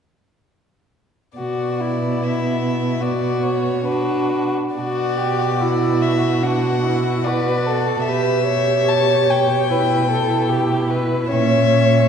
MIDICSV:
0, 0, Header, 1, 5, 480
1, 0, Start_track
1, 0, Key_signature, 2, "minor"
1, 0, Tempo, 865801
1, 759, Time_signature, 4, 2, 24, 8
1, 1233, Tempo, 813008
1, 2193, Tempo, 910470
1, 2673, Tempo, 848656
1, 3153, Tempo, 815217
1, 6965, End_track
2, 0, Start_track
2, 0, Title_t, "Violin"
2, 0, Program_c, 0, 40
2, 768, Note_on_c, 0, 74, 32
2, 1242, Note_on_c, 0, 76, 32
2, 1251, Note_off_c, 0, 74, 0
2, 1705, Note_on_c, 0, 74, 40
2, 1714, Note_off_c, 0, 76, 0
2, 1948, Note_on_c, 0, 73, 44
2, 1957, Note_off_c, 0, 74, 0
2, 2191, Note_on_c, 0, 71, 38
2, 2199, Note_off_c, 0, 73, 0
2, 2559, Note_off_c, 0, 71, 0
2, 2670, Note_on_c, 0, 74, 53
2, 3397, Note_on_c, 0, 76, 47
2, 3406, Note_off_c, 0, 74, 0
2, 3640, Note_on_c, 0, 78, 51
2, 3648, Note_off_c, 0, 76, 0
2, 4116, Note_on_c, 0, 74, 50
2, 4125, Note_off_c, 0, 78, 0
2, 4583, Note_off_c, 0, 74, 0
2, 4586, Note_on_c, 0, 76, 59
2, 5082, Note_on_c, 0, 81, 60
2, 5091, Note_off_c, 0, 76, 0
2, 5328, Note_on_c, 0, 79, 49
2, 5337, Note_off_c, 0, 81, 0
2, 6277, Note_off_c, 0, 79, 0
2, 6503, Note_on_c, 0, 76, 54
2, 6965, Note_off_c, 0, 76, 0
2, 6965, End_track
3, 0, Start_track
3, 0, Title_t, "Violin"
3, 0, Program_c, 1, 40
3, 768, Note_on_c, 1, 66, 30
3, 1001, Note_on_c, 1, 64, 32
3, 1009, Note_off_c, 1, 66, 0
3, 1695, Note_on_c, 1, 66, 39
3, 1704, Note_off_c, 1, 64, 0
3, 2186, Note_off_c, 1, 66, 0
3, 2189, Note_on_c, 1, 66, 44
3, 2551, Note_off_c, 1, 66, 0
3, 2672, Note_on_c, 1, 66, 38
3, 2908, Note_on_c, 1, 67, 41
3, 2917, Note_off_c, 1, 66, 0
3, 3159, Note_on_c, 1, 66, 42
3, 3168, Note_off_c, 1, 67, 0
3, 4128, Note_on_c, 1, 71, 47
3, 4137, Note_off_c, 1, 66, 0
3, 4360, Note_on_c, 1, 69, 47
3, 4369, Note_off_c, 1, 71, 0
3, 4613, Note_on_c, 1, 71, 43
3, 4622, Note_off_c, 1, 69, 0
3, 4837, Note_off_c, 1, 71, 0
3, 4840, Note_on_c, 1, 73, 49
3, 5567, Note_on_c, 1, 71, 41
3, 5576, Note_off_c, 1, 73, 0
3, 5795, Note_off_c, 1, 71, 0
3, 5798, Note_on_c, 1, 69, 43
3, 6026, Note_on_c, 1, 67, 44
3, 6035, Note_off_c, 1, 69, 0
3, 6269, Note_on_c, 1, 71, 46
3, 6278, Note_off_c, 1, 67, 0
3, 6507, Note_off_c, 1, 71, 0
3, 6510, Note_on_c, 1, 73, 50
3, 6965, Note_off_c, 1, 73, 0
3, 6965, End_track
4, 0, Start_track
4, 0, Title_t, "Viola"
4, 0, Program_c, 2, 41
4, 764, Note_on_c, 2, 59, 35
4, 2171, Note_off_c, 2, 59, 0
4, 2194, Note_on_c, 2, 62, 41
4, 2553, Note_off_c, 2, 62, 0
4, 2676, Note_on_c, 2, 66, 39
4, 3150, Note_on_c, 2, 64, 38
4, 3159, Note_off_c, 2, 66, 0
4, 3630, Note_on_c, 2, 62, 36
4, 3639, Note_off_c, 2, 64, 0
4, 3871, Note_on_c, 2, 64, 40
4, 3880, Note_off_c, 2, 62, 0
4, 4122, Note_on_c, 2, 66, 37
4, 4131, Note_off_c, 2, 64, 0
4, 4600, Note_off_c, 2, 66, 0
4, 4606, Note_on_c, 2, 67, 39
4, 4824, Note_off_c, 2, 67, 0
4, 4828, Note_on_c, 2, 67, 36
4, 5558, Note_on_c, 2, 64, 42
4, 5567, Note_off_c, 2, 67, 0
4, 5794, Note_off_c, 2, 64, 0
4, 5797, Note_on_c, 2, 64, 40
4, 6502, Note_off_c, 2, 64, 0
4, 6513, Note_on_c, 2, 61, 41
4, 6965, Note_off_c, 2, 61, 0
4, 6965, End_track
5, 0, Start_track
5, 0, Title_t, "Cello"
5, 0, Program_c, 3, 42
5, 767, Note_on_c, 3, 47, 34
5, 2542, Note_off_c, 3, 47, 0
5, 2675, Note_on_c, 3, 47, 39
5, 4577, Note_off_c, 3, 47, 0
5, 4602, Note_on_c, 3, 47, 39
5, 6515, Note_on_c, 3, 46, 44
5, 6523, Note_off_c, 3, 47, 0
5, 6965, Note_off_c, 3, 46, 0
5, 6965, End_track
0, 0, End_of_file